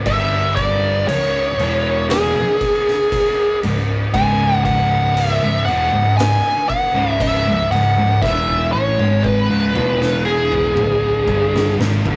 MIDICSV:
0, 0, Header, 1, 6, 480
1, 0, Start_track
1, 0, Key_signature, 4, "minor"
1, 0, Tempo, 1020408
1, 31, Time_signature, 4, 2, 24, 8
1, 5720, End_track
2, 0, Start_track
2, 0, Title_t, "Lead electric guitar"
2, 0, Program_c, 0, 29
2, 31, Note_on_c, 0, 76, 102
2, 261, Note_off_c, 0, 76, 0
2, 263, Note_on_c, 0, 74, 100
2, 505, Note_off_c, 0, 74, 0
2, 507, Note_on_c, 0, 73, 97
2, 969, Note_off_c, 0, 73, 0
2, 988, Note_on_c, 0, 68, 80
2, 1689, Note_off_c, 0, 68, 0
2, 1948, Note_on_c, 0, 80, 111
2, 2184, Note_off_c, 0, 80, 0
2, 2186, Note_on_c, 0, 78, 93
2, 2423, Note_on_c, 0, 76, 101
2, 2434, Note_off_c, 0, 78, 0
2, 2657, Note_on_c, 0, 78, 96
2, 2672, Note_off_c, 0, 76, 0
2, 2901, Note_off_c, 0, 78, 0
2, 2903, Note_on_c, 0, 80, 101
2, 3145, Note_off_c, 0, 80, 0
2, 3147, Note_on_c, 0, 78, 99
2, 3345, Note_off_c, 0, 78, 0
2, 3345, Note_on_c, 0, 76, 99
2, 3394, Note_off_c, 0, 76, 0
2, 3394, Note_on_c, 0, 76, 95
2, 3614, Note_off_c, 0, 76, 0
2, 3627, Note_on_c, 0, 78, 91
2, 3865, Note_on_c, 0, 76, 97
2, 3874, Note_off_c, 0, 78, 0
2, 4102, Note_off_c, 0, 76, 0
2, 4104, Note_on_c, 0, 73, 80
2, 4342, Note_on_c, 0, 71, 83
2, 4352, Note_off_c, 0, 73, 0
2, 4820, Note_off_c, 0, 71, 0
2, 4822, Note_on_c, 0, 68, 76
2, 5526, Note_off_c, 0, 68, 0
2, 5720, End_track
3, 0, Start_track
3, 0, Title_t, "Distorted electric guitar"
3, 0, Program_c, 1, 30
3, 4594, Note_on_c, 1, 47, 85
3, 5064, Note_off_c, 1, 47, 0
3, 5072, Note_on_c, 1, 38, 88
3, 5078, Note_on_c, 1, 45, 102
3, 5078, Note_on_c, 1, 50, 100
3, 5303, Note_off_c, 1, 38, 0
3, 5305, Note_off_c, 1, 45, 0
3, 5306, Note_off_c, 1, 50, 0
3, 5720, End_track
4, 0, Start_track
4, 0, Title_t, "Distorted electric guitar"
4, 0, Program_c, 2, 30
4, 25, Note_on_c, 2, 43, 97
4, 29, Note_on_c, 2, 50, 101
4, 31, Note_on_c, 2, 55, 105
4, 500, Note_off_c, 2, 43, 0
4, 502, Note_off_c, 2, 50, 0
4, 503, Note_off_c, 2, 55, 0
4, 511, Note_on_c, 2, 37, 66
4, 512, Note_on_c, 2, 44, 75
4, 702, Note_off_c, 2, 37, 0
4, 702, Note_off_c, 2, 44, 0
4, 752, Note_on_c, 2, 40, 86
4, 754, Note_on_c, 2, 47, 94
4, 756, Note_on_c, 2, 52, 107
4, 1103, Note_off_c, 2, 40, 0
4, 1104, Note_off_c, 2, 47, 0
4, 1105, Note_off_c, 2, 52, 0
4, 1710, Note_on_c, 2, 37, 68
4, 1712, Note_on_c, 2, 44, 67
4, 1901, Note_off_c, 2, 37, 0
4, 1902, Note_off_c, 2, 44, 0
4, 1946, Note_on_c, 2, 37, 93
4, 1948, Note_on_c, 2, 44, 93
4, 1950, Note_on_c, 2, 49, 91
4, 2539, Note_off_c, 2, 37, 0
4, 2540, Note_off_c, 2, 44, 0
4, 2541, Note_off_c, 2, 49, 0
4, 2553, Note_on_c, 2, 37, 63
4, 2558, Note_on_c, 2, 44, 79
4, 2670, Note_off_c, 2, 37, 0
4, 2672, Note_off_c, 2, 44, 0
4, 2677, Note_on_c, 2, 40, 92
4, 2681, Note_on_c, 2, 47, 107
4, 2785, Note_off_c, 2, 40, 0
4, 2786, Note_off_c, 2, 47, 0
4, 2787, Note_on_c, 2, 37, 60
4, 2788, Note_on_c, 2, 44, 73
4, 2979, Note_off_c, 2, 37, 0
4, 2979, Note_off_c, 2, 44, 0
4, 3266, Note_on_c, 2, 37, 103
4, 3267, Note_on_c, 2, 44, 101
4, 3270, Note_on_c, 2, 49, 91
4, 3499, Note_off_c, 2, 37, 0
4, 3499, Note_off_c, 2, 44, 0
4, 3501, Note_off_c, 2, 49, 0
4, 3508, Note_on_c, 2, 37, 63
4, 3509, Note_on_c, 2, 44, 67
4, 3627, Note_off_c, 2, 37, 0
4, 3628, Note_off_c, 2, 44, 0
4, 3636, Note_on_c, 2, 37, 61
4, 3637, Note_on_c, 2, 44, 72
4, 3746, Note_off_c, 2, 37, 0
4, 3746, Note_off_c, 2, 44, 0
4, 3751, Note_on_c, 2, 37, 60
4, 3752, Note_on_c, 2, 44, 69
4, 3867, Note_off_c, 2, 37, 0
4, 3869, Note_off_c, 2, 44, 0
4, 3869, Note_on_c, 2, 40, 91
4, 3872, Note_on_c, 2, 52, 96
4, 3873, Note_on_c, 2, 47, 107
4, 4101, Note_off_c, 2, 40, 0
4, 4102, Note_off_c, 2, 52, 0
4, 4103, Note_off_c, 2, 47, 0
4, 4107, Note_on_c, 2, 45, 87
4, 4109, Note_on_c, 2, 52, 92
4, 4220, Note_off_c, 2, 45, 0
4, 4220, Note_off_c, 2, 52, 0
4, 4223, Note_on_c, 2, 44, 94
4, 4226, Note_on_c, 2, 51, 88
4, 4227, Note_on_c, 2, 56, 99
4, 4458, Note_off_c, 2, 44, 0
4, 4459, Note_off_c, 2, 51, 0
4, 4460, Note_off_c, 2, 56, 0
4, 4460, Note_on_c, 2, 37, 93
4, 4465, Note_on_c, 2, 44, 105
4, 4572, Note_off_c, 2, 37, 0
4, 4573, Note_off_c, 2, 44, 0
4, 4574, Note_on_c, 2, 40, 94
4, 4574, Note_on_c, 2, 47, 92
4, 4578, Note_on_c, 2, 52, 101
4, 5049, Note_off_c, 2, 40, 0
4, 5051, Note_on_c, 2, 38, 86
4, 5054, Note_off_c, 2, 47, 0
4, 5055, Note_off_c, 2, 52, 0
4, 5056, Note_on_c, 2, 50, 107
4, 5057, Note_on_c, 2, 45, 82
4, 5292, Note_off_c, 2, 38, 0
4, 5295, Note_off_c, 2, 45, 0
4, 5295, Note_off_c, 2, 50, 0
4, 5298, Note_on_c, 2, 43, 93
4, 5301, Note_on_c, 2, 50, 103
4, 5304, Note_on_c, 2, 55, 108
4, 5536, Note_off_c, 2, 43, 0
4, 5537, Note_off_c, 2, 50, 0
4, 5539, Note_off_c, 2, 55, 0
4, 5540, Note_on_c, 2, 44, 82
4, 5544, Note_on_c, 2, 51, 99
4, 5657, Note_off_c, 2, 44, 0
4, 5659, Note_off_c, 2, 51, 0
4, 5664, Note_on_c, 2, 43, 77
4, 5668, Note_on_c, 2, 50, 83
4, 5720, Note_off_c, 2, 43, 0
4, 5720, Note_off_c, 2, 50, 0
4, 5720, End_track
5, 0, Start_track
5, 0, Title_t, "Picked electric bass"
5, 0, Program_c, 3, 34
5, 28, Note_on_c, 3, 31, 92
5, 490, Note_off_c, 3, 31, 0
5, 507, Note_on_c, 3, 25, 72
5, 731, Note_off_c, 3, 25, 0
5, 747, Note_on_c, 3, 28, 97
5, 1089, Note_off_c, 3, 28, 0
5, 1712, Note_on_c, 3, 25, 83
5, 1933, Note_off_c, 3, 25, 0
5, 1947, Note_on_c, 3, 25, 97
5, 2528, Note_off_c, 3, 25, 0
5, 2547, Note_on_c, 3, 25, 84
5, 2659, Note_off_c, 3, 25, 0
5, 2667, Note_on_c, 3, 28, 102
5, 2778, Note_off_c, 3, 28, 0
5, 2784, Note_on_c, 3, 25, 79
5, 3009, Note_off_c, 3, 25, 0
5, 3273, Note_on_c, 3, 25, 92
5, 3493, Note_off_c, 3, 25, 0
5, 3508, Note_on_c, 3, 25, 75
5, 3619, Note_off_c, 3, 25, 0
5, 3629, Note_on_c, 3, 25, 79
5, 3739, Note_off_c, 3, 25, 0
5, 3748, Note_on_c, 3, 25, 83
5, 3859, Note_off_c, 3, 25, 0
5, 3870, Note_on_c, 3, 28, 97
5, 4092, Note_off_c, 3, 28, 0
5, 4110, Note_on_c, 3, 33, 92
5, 4220, Note_off_c, 3, 33, 0
5, 4229, Note_on_c, 3, 32, 91
5, 4451, Note_off_c, 3, 32, 0
5, 4469, Note_on_c, 3, 25, 102
5, 4580, Note_off_c, 3, 25, 0
5, 4591, Note_on_c, 3, 28, 101
5, 5050, Note_off_c, 3, 28, 0
5, 5066, Note_on_c, 3, 26, 87
5, 5290, Note_off_c, 3, 26, 0
5, 5304, Note_on_c, 3, 31, 89
5, 5529, Note_off_c, 3, 31, 0
5, 5546, Note_on_c, 3, 32, 87
5, 5658, Note_off_c, 3, 32, 0
5, 5663, Note_on_c, 3, 31, 88
5, 5720, Note_off_c, 3, 31, 0
5, 5720, End_track
6, 0, Start_track
6, 0, Title_t, "Drums"
6, 28, Note_on_c, 9, 36, 106
6, 29, Note_on_c, 9, 49, 69
6, 75, Note_off_c, 9, 36, 0
6, 76, Note_off_c, 9, 49, 0
6, 268, Note_on_c, 9, 36, 98
6, 269, Note_on_c, 9, 49, 59
6, 315, Note_off_c, 9, 36, 0
6, 316, Note_off_c, 9, 49, 0
6, 511, Note_on_c, 9, 49, 88
6, 558, Note_off_c, 9, 49, 0
6, 749, Note_on_c, 9, 49, 66
6, 796, Note_off_c, 9, 49, 0
6, 987, Note_on_c, 9, 49, 82
6, 993, Note_on_c, 9, 38, 116
6, 1034, Note_off_c, 9, 49, 0
6, 1040, Note_off_c, 9, 38, 0
6, 1227, Note_on_c, 9, 36, 82
6, 1227, Note_on_c, 9, 49, 64
6, 1274, Note_off_c, 9, 36, 0
6, 1274, Note_off_c, 9, 49, 0
6, 1355, Note_on_c, 9, 38, 32
6, 1402, Note_off_c, 9, 38, 0
6, 1468, Note_on_c, 9, 36, 94
6, 1470, Note_on_c, 9, 49, 82
6, 1515, Note_off_c, 9, 36, 0
6, 1517, Note_off_c, 9, 49, 0
6, 1709, Note_on_c, 9, 49, 60
6, 1756, Note_off_c, 9, 49, 0
6, 1946, Note_on_c, 9, 49, 74
6, 1948, Note_on_c, 9, 36, 104
6, 1993, Note_off_c, 9, 49, 0
6, 1995, Note_off_c, 9, 36, 0
6, 2189, Note_on_c, 9, 36, 92
6, 2189, Note_on_c, 9, 49, 64
6, 2236, Note_off_c, 9, 36, 0
6, 2236, Note_off_c, 9, 49, 0
6, 2431, Note_on_c, 9, 49, 87
6, 2478, Note_off_c, 9, 49, 0
6, 2672, Note_on_c, 9, 49, 57
6, 2719, Note_off_c, 9, 49, 0
6, 2912, Note_on_c, 9, 49, 68
6, 2918, Note_on_c, 9, 38, 119
6, 2959, Note_off_c, 9, 49, 0
6, 2965, Note_off_c, 9, 38, 0
6, 3150, Note_on_c, 9, 36, 80
6, 3154, Note_on_c, 9, 49, 58
6, 3197, Note_off_c, 9, 36, 0
6, 3201, Note_off_c, 9, 49, 0
6, 3389, Note_on_c, 9, 36, 88
6, 3392, Note_on_c, 9, 49, 80
6, 3436, Note_off_c, 9, 36, 0
6, 3439, Note_off_c, 9, 49, 0
6, 3632, Note_on_c, 9, 49, 54
6, 3679, Note_off_c, 9, 49, 0
6, 3869, Note_on_c, 9, 36, 109
6, 3878, Note_on_c, 9, 38, 58
6, 3916, Note_off_c, 9, 36, 0
6, 3926, Note_off_c, 9, 38, 0
6, 3989, Note_on_c, 9, 36, 55
6, 4036, Note_off_c, 9, 36, 0
6, 4231, Note_on_c, 9, 48, 59
6, 4278, Note_off_c, 9, 48, 0
6, 4348, Note_on_c, 9, 36, 78
6, 4395, Note_off_c, 9, 36, 0
6, 4589, Note_on_c, 9, 47, 83
6, 4636, Note_off_c, 9, 47, 0
6, 4713, Note_on_c, 9, 38, 69
6, 4760, Note_off_c, 9, 38, 0
6, 4948, Note_on_c, 9, 45, 77
6, 4995, Note_off_c, 9, 45, 0
6, 5066, Note_on_c, 9, 45, 93
6, 5113, Note_off_c, 9, 45, 0
6, 5304, Note_on_c, 9, 36, 99
6, 5351, Note_off_c, 9, 36, 0
6, 5436, Note_on_c, 9, 38, 84
6, 5483, Note_off_c, 9, 38, 0
6, 5554, Note_on_c, 9, 38, 94
6, 5601, Note_off_c, 9, 38, 0
6, 5671, Note_on_c, 9, 43, 90
6, 5718, Note_off_c, 9, 43, 0
6, 5720, End_track
0, 0, End_of_file